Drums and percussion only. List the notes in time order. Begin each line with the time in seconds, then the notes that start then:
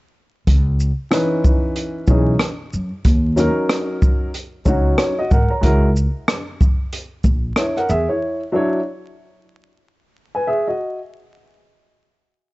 0.47 kick, closed hi-hat
0.80 shaker
1.11 cross-stick, closed hi-hat
1.44 kick, shaker
1.76 closed hi-hat
2.07 kick, shaker
2.39 cross-stick, closed hi-hat
2.73 shaker
3.05 kick, closed hi-hat
3.37 closed hi-hat, shaker
3.69 cross-stick, closed hi-hat
4.02 kick, shaker
4.34 closed hi-hat
4.66 kick, shaker
4.98 cross-stick, closed hi-hat
5.31 kick, shaker
5.63 kick, closed hi-hat
5.97 shaker
6.28 cross-stick, closed hi-hat
6.61 kick, shaker
6.93 closed hi-hat
7.24 kick, shaker
7.56 cross-stick, closed hi-hat
7.77 cross-stick
7.89 shaker